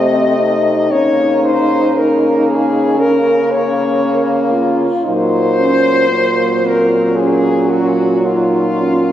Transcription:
0, 0, Header, 1, 5, 480
1, 0, Start_track
1, 0, Tempo, 1039861
1, 424, Time_signature, 4, 2, 24, 8
1, 3310, Tempo, 1081081
1, 3790, Tempo, 1162791
1, 4149, End_track
2, 0, Start_track
2, 0, Title_t, "French horn"
2, 0, Program_c, 0, 60
2, 0, Note_on_c, 0, 75, 106
2, 422, Note_on_c, 0, 73, 120
2, 429, Note_off_c, 0, 75, 0
2, 662, Note_off_c, 0, 73, 0
2, 664, Note_on_c, 0, 72, 106
2, 909, Note_on_c, 0, 70, 96
2, 916, Note_off_c, 0, 72, 0
2, 1144, Note_on_c, 0, 68, 106
2, 1151, Note_off_c, 0, 70, 0
2, 1383, Note_on_c, 0, 70, 112
2, 1390, Note_off_c, 0, 68, 0
2, 1621, Note_on_c, 0, 73, 99
2, 1628, Note_off_c, 0, 70, 0
2, 2101, Note_off_c, 0, 73, 0
2, 2347, Note_on_c, 0, 72, 127
2, 3080, Note_on_c, 0, 70, 99
2, 3087, Note_off_c, 0, 72, 0
2, 3306, Note_on_c, 0, 68, 100
2, 3313, Note_off_c, 0, 70, 0
2, 3544, Note_on_c, 0, 66, 93
2, 3550, Note_off_c, 0, 68, 0
2, 3793, Note_on_c, 0, 65, 94
2, 3799, Note_off_c, 0, 66, 0
2, 4149, Note_off_c, 0, 65, 0
2, 4149, End_track
3, 0, Start_track
3, 0, Title_t, "French horn"
3, 0, Program_c, 1, 60
3, 0, Note_on_c, 1, 60, 87
3, 174, Note_off_c, 1, 60, 0
3, 177, Note_on_c, 1, 63, 94
3, 1380, Note_on_c, 1, 61, 77
3, 1387, Note_off_c, 1, 63, 0
3, 1740, Note_off_c, 1, 61, 0
3, 1852, Note_on_c, 1, 58, 74
3, 2084, Note_on_c, 1, 65, 84
3, 2091, Note_off_c, 1, 58, 0
3, 2326, Note_on_c, 1, 63, 92
3, 2333, Note_off_c, 1, 65, 0
3, 2574, Note_on_c, 1, 61, 80
3, 2581, Note_off_c, 1, 63, 0
3, 2812, Note_on_c, 1, 58, 73
3, 2819, Note_off_c, 1, 61, 0
3, 3059, Note_on_c, 1, 60, 78
3, 3065, Note_off_c, 1, 58, 0
3, 3306, Note_on_c, 1, 61, 73
3, 3313, Note_off_c, 1, 60, 0
3, 3777, Note_off_c, 1, 61, 0
3, 3779, Note_on_c, 1, 63, 73
3, 4020, Note_on_c, 1, 61, 63
3, 4027, Note_off_c, 1, 63, 0
3, 4149, Note_off_c, 1, 61, 0
3, 4149, End_track
4, 0, Start_track
4, 0, Title_t, "French horn"
4, 0, Program_c, 2, 60
4, 0, Note_on_c, 2, 57, 81
4, 402, Note_off_c, 2, 57, 0
4, 421, Note_on_c, 2, 58, 78
4, 892, Note_off_c, 2, 58, 0
4, 904, Note_on_c, 2, 58, 80
4, 1376, Note_off_c, 2, 58, 0
4, 1386, Note_on_c, 2, 58, 79
4, 2264, Note_off_c, 2, 58, 0
4, 2343, Note_on_c, 2, 54, 82
4, 4149, Note_off_c, 2, 54, 0
4, 4149, End_track
5, 0, Start_track
5, 0, Title_t, "French horn"
5, 0, Program_c, 3, 60
5, 0, Note_on_c, 3, 48, 77
5, 421, Note_off_c, 3, 48, 0
5, 424, Note_on_c, 3, 49, 89
5, 2260, Note_off_c, 3, 49, 0
5, 2338, Note_on_c, 3, 46, 87
5, 4149, Note_off_c, 3, 46, 0
5, 4149, End_track
0, 0, End_of_file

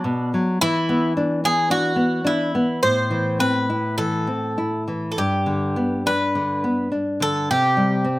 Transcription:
0, 0, Header, 1, 3, 480
1, 0, Start_track
1, 0, Key_signature, 1, "minor"
1, 0, Tempo, 560748
1, 514, Time_signature, 4, 2, 24, 8
1, 2914, Tempo, 589971
1, 5314, Tempo, 567644
1, 6868, End_track
2, 0, Start_track
2, 0, Title_t, "Bouzouki"
2, 0, Program_c, 0, 25
2, 0, Note_on_c, 0, 62, 60
2, 243, Note_off_c, 0, 62, 0
2, 526, Note_on_c, 0, 64, 101
2, 961, Note_off_c, 0, 64, 0
2, 1242, Note_on_c, 0, 68, 82
2, 1461, Note_off_c, 0, 68, 0
2, 1465, Note_on_c, 0, 66, 76
2, 1940, Note_on_c, 0, 64, 67
2, 1953, Note_off_c, 0, 66, 0
2, 2393, Note_off_c, 0, 64, 0
2, 2420, Note_on_c, 0, 72, 87
2, 2909, Note_off_c, 0, 72, 0
2, 2912, Note_on_c, 0, 71, 81
2, 3377, Note_off_c, 0, 71, 0
2, 3380, Note_on_c, 0, 69, 68
2, 4071, Note_off_c, 0, 69, 0
2, 4307, Note_on_c, 0, 69, 48
2, 4356, Note_off_c, 0, 69, 0
2, 4360, Note_on_c, 0, 67, 63
2, 5081, Note_on_c, 0, 71, 80
2, 5103, Note_off_c, 0, 67, 0
2, 5769, Note_off_c, 0, 71, 0
2, 6049, Note_on_c, 0, 69, 85
2, 6286, Note_off_c, 0, 69, 0
2, 6289, Note_on_c, 0, 67, 78
2, 6868, Note_off_c, 0, 67, 0
2, 6868, End_track
3, 0, Start_track
3, 0, Title_t, "Nylon-string guitar"
3, 0, Program_c, 1, 24
3, 35, Note_on_c, 1, 47, 48
3, 269, Note_off_c, 1, 47, 0
3, 290, Note_on_c, 1, 54, 47
3, 515, Note_off_c, 1, 54, 0
3, 531, Note_on_c, 1, 52, 66
3, 762, Note_on_c, 1, 59, 57
3, 986, Note_off_c, 1, 59, 0
3, 1000, Note_on_c, 1, 62, 58
3, 1222, Note_off_c, 1, 62, 0
3, 1231, Note_on_c, 1, 59, 47
3, 1452, Note_off_c, 1, 59, 0
3, 1456, Note_on_c, 1, 62, 52
3, 1674, Note_off_c, 1, 62, 0
3, 1677, Note_on_c, 1, 59, 46
3, 1918, Note_off_c, 1, 59, 0
3, 1921, Note_on_c, 1, 62, 51
3, 2166, Note_off_c, 1, 62, 0
3, 2181, Note_on_c, 1, 59, 47
3, 2399, Note_off_c, 1, 52, 0
3, 2418, Note_off_c, 1, 59, 0
3, 2421, Note_on_c, 1, 45, 55
3, 2658, Note_on_c, 1, 52, 43
3, 2900, Note_off_c, 1, 52, 0
3, 2904, Note_on_c, 1, 60, 45
3, 3135, Note_off_c, 1, 60, 0
3, 3151, Note_on_c, 1, 64, 41
3, 3379, Note_off_c, 1, 64, 0
3, 3384, Note_on_c, 1, 52, 47
3, 3615, Note_off_c, 1, 52, 0
3, 3620, Note_on_c, 1, 60, 42
3, 3855, Note_off_c, 1, 60, 0
3, 3869, Note_on_c, 1, 64, 41
3, 4101, Note_off_c, 1, 64, 0
3, 4112, Note_on_c, 1, 52, 42
3, 4313, Note_off_c, 1, 45, 0
3, 4344, Note_off_c, 1, 52, 0
3, 4356, Note_on_c, 1, 43, 50
3, 4588, Note_on_c, 1, 50, 48
3, 4825, Note_off_c, 1, 50, 0
3, 4833, Note_on_c, 1, 59, 47
3, 5068, Note_off_c, 1, 59, 0
3, 5075, Note_on_c, 1, 62, 48
3, 5307, Note_off_c, 1, 62, 0
3, 5313, Note_on_c, 1, 50, 49
3, 5551, Note_off_c, 1, 50, 0
3, 5555, Note_on_c, 1, 59, 41
3, 5786, Note_off_c, 1, 59, 0
3, 5789, Note_on_c, 1, 62, 43
3, 6028, Note_off_c, 1, 62, 0
3, 6031, Note_on_c, 1, 50, 49
3, 6251, Note_off_c, 1, 43, 0
3, 6268, Note_off_c, 1, 50, 0
3, 6287, Note_on_c, 1, 48, 58
3, 6509, Note_on_c, 1, 55, 49
3, 6743, Note_on_c, 1, 60, 49
3, 6744, Note_off_c, 1, 55, 0
3, 6868, Note_off_c, 1, 48, 0
3, 6868, Note_off_c, 1, 60, 0
3, 6868, End_track
0, 0, End_of_file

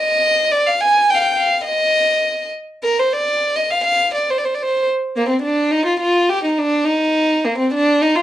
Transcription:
0, 0, Header, 1, 2, 480
1, 0, Start_track
1, 0, Tempo, 574713
1, 444, Time_signature, 2, 2, 24, 8
1, 6869, End_track
2, 0, Start_track
2, 0, Title_t, "Violin"
2, 0, Program_c, 0, 40
2, 0, Note_on_c, 0, 75, 91
2, 430, Note_on_c, 0, 74, 85
2, 443, Note_off_c, 0, 75, 0
2, 555, Note_on_c, 0, 77, 74
2, 568, Note_off_c, 0, 74, 0
2, 671, Note_on_c, 0, 80, 83
2, 683, Note_off_c, 0, 77, 0
2, 919, Note_on_c, 0, 79, 83
2, 932, Note_off_c, 0, 80, 0
2, 953, Note_on_c, 0, 77, 77
2, 966, Note_off_c, 0, 79, 0
2, 969, Note_on_c, 0, 79, 79
2, 981, Note_off_c, 0, 77, 0
2, 1015, Note_off_c, 0, 79, 0
2, 1020, Note_on_c, 0, 79, 76
2, 1138, Note_off_c, 0, 79, 0
2, 1143, Note_on_c, 0, 77, 73
2, 1368, Note_off_c, 0, 77, 0
2, 1373, Note_on_c, 0, 75, 91
2, 2077, Note_off_c, 0, 75, 0
2, 2365, Note_on_c, 0, 70, 83
2, 2498, Note_on_c, 0, 72, 65
2, 2510, Note_off_c, 0, 70, 0
2, 2614, Note_on_c, 0, 74, 82
2, 2626, Note_off_c, 0, 72, 0
2, 2973, Note_on_c, 0, 75, 68
2, 2985, Note_off_c, 0, 74, 0
2, 3095, Note_on_c, 0, 77, 82
2, 3108, Note_off_c, 0, 75, 0
2, 3202, Note_off_c, 0, 77, 0
2, 3207, Note_on_c, 0, 77, 82
2, 3431, Note_off_c, 0, 77, 0
2, 3462, Note_on_c, 0, 74, 67
2, 3594, Note_on_c, 0, 72, 67
2, 3606, Note_off_c, 0, 74, 0
2, 3656, Note_on_c, 0, 74, 61
2, 3668, Note_off_c, 0, 72, 0
2, 3713, Note_on_c, 0, 72, 54
2, 3726, Note_off_c, 0, 74, 0
2, 3794, Note_on_c, 0, 74, 56
2, 3807, Note_off_c, 0, 72, 0
2, 3863, Note_on_c, 0, 72, 75
2, 3875, Note_off_c, 0, 74, 0
2, 4061, Note_off_c, 0, 72, 0
2, 4312, Note_on_c, 0, 58, 81
2, 4409, Note_off_c, 0, 58, 0
2, 4414, Note_on_c, 0, 60, 61
2, 4523, Note_off_c, 0, 60, 0
2, 4531, Note_on_c, 0, 62, 76
2, 4771, Note_on_c, 0, 63, 85
2, 4784, Note_off_c, 0, 62, 0
2, 4884, Note_off_c, 0, 63, 0
2, 4889, Note_on_c, 0, 65, 69
2, 5001, Note_off_c, 0, 65, 0
2, 5012, Note_on_c, 0, 65, 76
2, 5254, Note_on_c, 0, 67, 85
2, 5267, Note_off_c, 0, 65, 0
2, 5371, Note_off_c, 0, 67, 0
2, 5379, Note_on_c, 0, 63, 64
2, 5500, Note_on_c, 0, 62, 81
2, 5513, Note_off_c, 0, 63, 0
2, 5721, Note_on_c, 0, 63, 88
2, 5733, Note_off_c, 0, 62, 0
2, 6219, Note_on_c, 0, 58, 76
2, 6231, Note_off_c, 0, 63, 0
2, 6325, Note_off_c, 0, 58, 0
2, 6330, Note_on_c, 0, 60, 68
2, 6440, Note_off_c, 0, 60, 0
2, 6466, Note_on_c, 0, 62, 89
2, 6695, Note_on_c, 0, 63, 89
2, 6708, Note_off_c, 0, 62, 0
2, 6810, Note_on_c, 0, 65, 83
2, 6822, Note_off_c, 0, 63, 0
2, 6869, Note_off_c, 0, 65, 0
2, 6869, End_track
0, 0, End_of_file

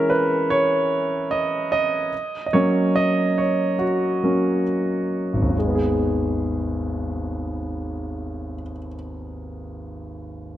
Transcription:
0, 0, Header, 1, 2, 480
1, 0, Start_track
1, 0, Key_signature, 5, "minor"
1, 0, Tempo, 808625
1, 1259, Time_signature, 4, 2, 24, 8
1, 1259, Tempo, 837989
1, 2219, Tempo, 882353
1, 5904, End_track
2, 0, Start_track
2, 0, Title_t, "Grand piano"
2, 0, Program_c, 0, 0
2, 0, Control_c, 0, 64, 127
2, 0, Note_on_c, 0, 52, 45
2, 0, Note_on_c, 0, 56, 43
2, 0, Note_on_c, 0, 61, 53
2, 0, Note_on_c, 0, 70, 79
2, 0, Note_on_c, 0, 73, 72
2, 0, Note_on_c, 0, 76, 105
2, 57, Note_on_c, 0, 71, 70
2, 66, Note_off_c, 0, 70, 0
2, 279, Note_off_c, 0, 71, 0
2, 299, Note_off_c, 0, 73, 0
2, 299, Note_on_c, 0, 73, 85
2, 752, Note_off_c, 0, 73, 0
2, 777, Note_on_c, 0, 75, 70
2, 1000, Note_off_c, 0, 75, 0
2, 1020, Note_on_c, 0, 75, 78
2, 1234, Note_off_c, 0, 52, 0
2, 1236, Note_off_c, 0, 56, 0
2, 1238, Note_off_c, 0, 61, 0
2, 1265, Control_c, 0, 64, 0
2, 1266, Note_off_c, 0, 76, 0
2, 1376, Control_c, 0, 64, 127
2, 1447, Note_off_c, 0, 75, 0
2, 1456, Note_on_c, 0, 75, 50
2, 1494, Note_on_c, 0, 73, 73
2, 1497, Note_off_c, 0, 75, 0
2, 1497, Note_on_c, 0, 54, 48
2, 1499, Note_on_c, 0, 58, 41
2, 1504, Note_on_c, 0, 61, 49
2, 1737, Note_on_c, 0, 75, 81
2, 1741, Note_off_c, 0, 73, 0
2, 1979, Note_on_c, 0, 73, 66
2, 1983, Note_off_c, 0, 75, 0
2, 2196, Note_off_c, 0, 54, 0
2, 2197, Note_off_c, 0, 58, 0
2, 2199, Note_off_c, 0, 61, 0
2, 2215, Note_on_c, 0, 66, 54
2, 2227, Note_off_c, 0, 73, 0
2, 2457, Note_on_c, 0, 54, 31
2, 2458, Note_on_c, 0, 58, 29
2, 2462, Note_on_c, 0, 61, 36
2, 2666, Note_off_c, 0, 66, 0
2, 2670, Note_off_c, 0, 54, 0
2, 2670, Note_off_c, 0, 58, 0
2, 2672, Note_off_c, 0, 61, 0
2, 3055, Note_on_c, 0, 32, 38
2, 3102, Note_on_c, 0, 39, 35
2, 3148, Note_on_c, 0, 51, 33
2, 3179, Control_c, 0, 64, 0
2, 3194, Note_on_c, 0, 56, 33
2, 3238, Note_on_c, 0, 59, 31
2, 3283, Note_on_c, 0, 68, 39
2, 3288, Control_c, 0, 64, 127
2, 4793, Note_off_c, 0, 32, 0
2, 4841, Note_off_c, 0, 39, 0
2, 4886, Note_off_c, 0, 51, 0
2, 4932, Note_off_c, 0, 56, 0
2, 4977, Note_off_c, 0, 59, 0
2, 5022, Note_off_c, 0, 68, 0
2, 5904, End_track
0, 0, End_of_file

